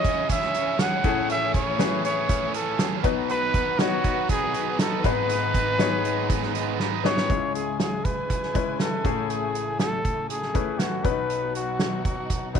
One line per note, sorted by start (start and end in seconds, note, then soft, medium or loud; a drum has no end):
0.00 1.00 C#2 medium
0.00 1.00 C#3 medium
0.00 3.01 E3 medium
0.00 1.03 C#4 medium
0.00 1.04 C#4 medium
0.00 1.04 E4 medium
0.00 1.05 G#4 medium
0.00 0.29 G#4 medium
0.00 1.06 C#5 medium
0.00 3.01 C#5 medium
0.00 0.27 D#5 loud
0.00 3.00 G#5 medium
0.05 0.28 C#4 soft
0.05 0.28 E4 soft
0.05 kick medium
0.05 closed hi-hat medium
0.29 0.54 C#3 medium
0.29 0.54 G#3 medium
0.29 0.54 C#4 loud
0.29 0.53 E4 loud
0.29 0.52 G#4 loud
0.29 0.82 E5 medium
0.29 kick medium
0.29 closed hi-hat loud
0.42 snare soft
0.53 0.78 C#4 soft
0.53 0.79 E4 soft
0.53 0.79 G#4 medium
0.53 closed hi-hat medium
0.78 1.04 G#3 medium
0.78 1.04 C#4 medium
0.78 1.03 E4 medium
0.78 1.02 G#4 medium
0.78 1.30 F#5 loud
0.78 snare loud
0.78 closed hi-hat medium
1.03 3.01 A1 medium
1.03 3.01 A2 medium
1.03 3.03 A3 medium
1.03 1.65 C#4 medium
1.03 1.28 C#4 soft
1.03 1.65 E4 medium
1.03 1.29 E4 medium
1.03 1.29 G#4 medium
1.03 1.65 G#4 medium
1.03 1.66 A4 medium
1.03 kick loud
1.03 closed hi-hat medium
1.29 1.54 A3 medium
1.29 1.54 C#4 loud
1.29 1.53 E4 medium
1.29 1.52 G#4 medium
1.29 1.53 E5 loud
1.29 closed hi-hat medium
1.54 1.78 C#4 soft
1.54 1.78 E4 medium
1.54 1.79 G#4 medium
1.54 2.01 C#5 medium
1.54 kick medium
1.54 closed hi-hat medium
1.78 2.04 A3 medium
1.78 2.60 C#4 medium
1.78 2.04 C#4 medium
1.78 2.60 E4 medium
1.78 2.03 E4 medium
1.78 2.60 G#4 medium
1.78 2.02 G#4 medium
1.78 2.61 B4 medium
1.78 snare loud
1.78 closed hi-hat medium
2.03 2.28 C#4 soft
2.03 2.29 E4 soft
2.03 2.29 G#4 medium
2.03 2.51 C#5 medium
2.03 closed hi-hat medium
2.29 2.54 A3 medium
2.29 2.54 C#4 medium
2.29 2.53 E4 loud
2.29 2.52 G#4 loud
2.29 kick medium
2.29 closed hi-hat loud
2.53 2.78 C#4 medium
2.53 2.78 E4 medium
2.53 2.79 G#4 medium
2.53 3.01 A4 medium
2.53 closed hi-hat medium
2.78 3.04 A3 medium
2.78 3.04 C#4 medium
2.78 3.04 E4 medium
2.78 3.03 G#4 medium
2.78 snare loud
2.78 closed hi-hat medium
3.03 5.00 B1 medium
3.03 5.00 B2 medium
3.03 7.26 D#3 medium
3.03 3.28 F#3 medium
3.03 3.65 B3 medium
3.03 7.25 B3 medium
3.03 3.28 B3 medium
3.03 3.29 D#4 medium
3.03 3.65 D#4 medium
3.03 5.02 F#4 medium
3.03 3.65 F#4 medium
3.03 3.29 B4 medium
3.03 7.25 B4 medium
3.03 3.66 B4 medium
3.03 kick loud
3.03 closed hi-hat medium
3.29 3.54 B2 medium
3.29 3.54 D#3 medium
3.29 3.54 F#3 medium
3.29 3.54 B3 medium
3.29 3.53 D#4 medium
3.29 3.81 B4 loud
3.29 3.52 B4 loud
3.29 closed hi-hat medium
3.53 3.77 F#3 medium
3.53 3.78 B3 medium
3.53 3.79 D#4 medium
3.53 3.79 B4 medium
3.53 kick medium
3.53 closed hi-hat medium
3.79 4.04 F#3 medium
3.79 4.60 B3 medium
3.79 4.04 B3 medium
3.79 4.60 D#4 medium
3.79 4.03 D#4 medium
3.79 4.30 F#4 loud
3.79 4.61 F#4 medium
3.79 4.03 B4 medium
3.79 4.61 C#5 medium
3.79 snare loud
3.79 closed hi-hat medium
4.04 4.28 F#3 soft
4.04 4.28 B3 soft
4.04 4.29 D#4 medium
4.04 4.29 B4 medium
4.04 kick medium
4.04 closed hi-hat medium
4.29 4.54 B2 loud
4.29 4.54 D#3 loud
4.29 4.54 F#3 loud
4.29 4.54 B3 loud
4.29 4.53 D#4 loud
4.29 4.76 G#4 medium
4.29 4.52 B4 loud
4.29 kick medium
4.29 closed hi-hat loud
4.54 4.77 F#3 soft
4.54 4.78 B3 medium
4.54 4.79 D#4 medium
4.54 4.79 B4 medium
4.54 closed hi-hat medium
4.78 5.04 F#3 medium
4.78 5.03 B3 medium
4.78 5.02 D#4 medium
4.78 5.07 A4 medium
4.78 5.02 B4 medium
4.78 snare loud
4.78 closed hi-hat medium
5.03 7.01 G#1 medium
5.03 7.01 G#2 medium
5.03 5.28 G#3 soft
5.03 5.65 B3 medium
5.03 5.29 B3 medium
5.03 5.29 D#4 medium
5.03 5.65 D#4 medium
5.03 7.27 G#4 medium
5.03 5.66 G#4 medium
5.03 5.29 B4 medium
5.03 6.80 B4 loud
5.03 5.66 B4 medium
5.03 kick loud
5.03 closed hi-hat medium
5.29 5.54 G#2 medium
5.29 5.54 D#3 medium
5.29 5.55 G#3 medium
5.29 5.54 B3 medium
5.29 5.53 D#4 medium
5.29 5.53 B4 medium
5.29 closed hi-hat medium
5.54 5.77 G#3 soft
5.54 5.78 B3 medium
5.54 5.79 D#4 medium
5.54 5.79 B4 medium
5.54 kick medium
5.54 closed hi-hat medium
5.78 6.04 G#3 medium
5.78 6.60 B3 medium
5.78 6.04 B3 medium
5.78 6.60 D#4 medium
5.78 6.03 D#4 medium
5.78 6.61 G#4 medium
5.78 6.02 B4 medium
5.78 6.61 C#5 medium
5.78 snare loud
5.78 closed hi-hat medium
6.04 6.28 G#3 soft
6.04 6.29 B3 soft
6.04 6.29 D#4 medium
6.04 6.29 B4 medium
6.04 closed hi-hat medium
6.29 6.54 G#2 medium
6.29 6.54 D#3 medium
6.29 6.55 G#3 medium
6.29 6.54 B3 loud
6.29 6.53 D#4 medium
6.29 6.52 B4 loud
6.29 kick medium
6.29 closed hi-hat medium
6.42 snare soft
6.54 6.78 G#3 medium
6.54 6.79 B3 medium
6.54 6.79 D#4 soft
6.54 6.79 B4 medium
6.54 closed hi-hat medium
6.79 7.04 G#3 medium
6.79 7.04 B3 medium
6.79 7.04 D#4 medium
6.79 7.03 B4 medium
6.79 snare medium
7.04 7.30 G#3 soft
7.04 7.24 B3 medium
7.04 7.30 B3 soft
7.04 7.25 D#4 medium
7.04 7.30 D#4 soft
7.04 7.25 G#4 medium
7.04 7.29 B4 medium
7.04 7.25 B4 medium
7.04 7.52 C#5 loud
7.04 snare medium
7.17 snare medium
7.29 9.01 C#2 soft
7.29 11.01 C#3 medium
7.29 9.01 C#3 soft
7.29 8.10 G#3 medium
7.29 9.03 G#3 medium
7.29 8.11 C#4 medium
7.29 11.01 E4 medium
7.29 8.11 E4 soft
7.29 8.11 G#4 medium
7.29 11.01 G#5 medium
7.29 kick loud
7.29 closed hi-hat medium
7.55 7.78 G#4 medium
7.55 closed hi-hat medium
7.80 8.06 G#4 medium
7.80 snare medium
7.80 closed hi-hat medium
8.05 8.80 B4 medium
8.05 kick medium
8.05 closed hi-hat medium
8.30 kick medium
8.30 closed hi-hat medium
8.43 snare soft
8.54 9.04 G#3 medium
8.54 9.03 C#4 medium
8.54 9.04 E4 medium
8.54 9.05 B4 medium
8.54 kick medium
8.54 closed hi-hat medium
8.80 9.31 A4 medium
8.80 snare medium
8.80 closed hi-hat medium
9.04 11.01 A1 medium
9.04 11.01 A2 medium
9.04 9.85 A3 medium
9.04 11.03 A3 medium
9.04 9.86 C#4 medium
9.04 9.86 E4 medium
9.04 9.86 G#4 medium
9.04 kick medium
9.04 closed hi-hat medium
9.29 9.80 G#4 medium
9.29 closed hi-hat medium
9.55 closed hi-hat medium
9.79 10.26 A4 medium
9.79 snare medium
9.79 closed hi-hat medium
10.05 kick medium
10.05 closed hi-hat medium
10.29 10.80 G#4 medium
10.29 closed hi-hat medium
10.42 snare soft
10.54 11.04 A3 medium
10.54 11.03 C#4 medium
10.54 11.05 E4 medium
10.54 11.04 B4 medium
10.54 kick medium
10.54 closed hi-hat medium
10.79 11.07 F#4 medium
10.79 snare medium
10.79 closed hi-hat medium
11.04 12.60 B1 medium
11.04 12.60 B2 medium
11.04 12.60 F#3 medium
11.04 11.85 B3 medium
11.04 11.10 C#4 soft
11.04 12.60 D#4 medium
11.04 12.60 F#4 medium
11.04 11.86 F#4 medium
11.04 11.55 B4 medium
11.04 11.86 B4 medium
11.04 kick loud
11.04 closed hi-hat medium
11.10 11.89 D#4 medium
11.30 closed hi-hat medium
11.55 12.02 F#4 medium
11.55 closed hi-hat medium
11.79 snare loud
11.79 closed hi-hat medium
12.05 12.50 F#4 medium
12.05 kick medium
12.05 closed hi-hat medium
12.30 kick medium
12.30 closed hi-hat medium
12.54 12.60 B3 medium
12.54 12.60 D#4 medium
12.54 12.60 F#4 medium
12.54 12.60 B4 medium
12.54 kick medium
12.54 closed hi-hat medium